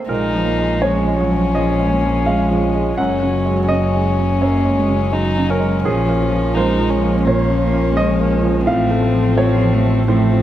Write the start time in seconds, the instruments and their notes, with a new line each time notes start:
Already playing: upright piano C3 A3 C4 A4
0.08 double bass A#1, upright piano A#2 A#4, analog synth pad G#3 F4 C#5, cello G#3, violin D#4
0.35 upright piano F3
0.45 cello A#3
0.58 upright piano G#3
0.82 upright piano F3 C#5, cello G#3, violin C#4
1.08 upright piano G#3
1.18 cello F#3
1.31 upright piano F3
1.53 upright piano A#2 D#5, cello F3
1.80 upright piano G#3
1.90 cello A#3
2.04 upright piano F3
2.26 cello G#3, upright piano G#3 F5
2.51 upright piano F3
2.74 upright piano G#3
2.97 double bass F#1, upright piano F#2 F#5, cello F#3, violin C#4, analog synth pad F#4
3.22 upright piano C#3
3.46 upright piano G#3
3.69 upright piano C#3 D#5, violin C#4
3.94 upright piano G#3
4.18 upright piano C#3
4.40 upright piano F#2 C#5, cello A#3
4.65 upright piano G#3
4.78 cello G#3
4.88 upright piano C#3
5.12 cello F#3, upright piano G#3, violin D#4
5.37 upright piano C#3
5.50 violin C#4, upright piano A#4
5.60 upright piano G#3
5.83 double bass A#1, upright piano A#2 G#4, cello F3, analog synth pad F3 C#4 F4, violin C#4
6.09 upright piano A#3
6.20 cello F3
6.32 upright piano F3
6.55 cello G#3, upright piano A#3 C5, violin D#4
6.78 upright piano F3
6.90 violin C#4
7.04 upright piano A#3
7.24 upright piano A#2 C#5, cello A#3, violin C#4
7.50 upright piano F3
7.60 cello A#3
7.73 upright piano A#3
7.95 upright piano F3 D#5, cello G#3
8.20 upright piano A#3
8.43 upright piano F3
8.66 double bass A1, upright piano A2 F5, cello A3, violin C4, analog synth pad A4
8.90 upright piano A3
9.02 cello F3
9.13 upright piano F3
9.37 cello F3, upright piano A3 C#5
9.61 upright piano F3
9.73 cello A3
9.84 upright piano A3
10.08 upright piano A2 C5, cello A3, violin C4
10.31 upright piano F3